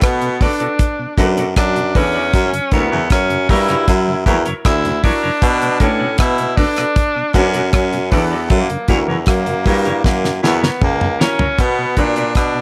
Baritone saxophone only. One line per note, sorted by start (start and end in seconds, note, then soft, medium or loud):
0.03 0.38 B2 medium
1.18 1.54 F#2 loud
1.57 1.92 F#2 loud
1.95 2.31 E2 medium
2.34 2.52 F#2 loud
2.72 2.90 D2 loud
2.92 3.10 E2 medium
3.11 3.46 F#2 loud
3.50 3.85 G2 loud
3.88 4.24 F#2 loud
4.26 4.44 E2 loud
4.65 5.01 D2 loud
5.42 5.78 B2 loud
5.81 6.16 A2 medium
6.19 6.55 B2 medium
7.35 7.70 F#2 loud
7.74 8.09 F#2 loud
8.12 8.48 E2 medium
8.51 8.68 F#2 loud
8.89 9.07 D2 medium
9.09 9.26 E2 medium
9.27 9.63 F#2 medium
9.66 10.02 G2 loud
10.05 10.40 F#2 loud
10.44 10.61 E2 loud
10.82 11.17 C#2 medium
11.59 11.94 B2 loud
11.98 12.33 A#2 medium
12.36 12.61 B2 medium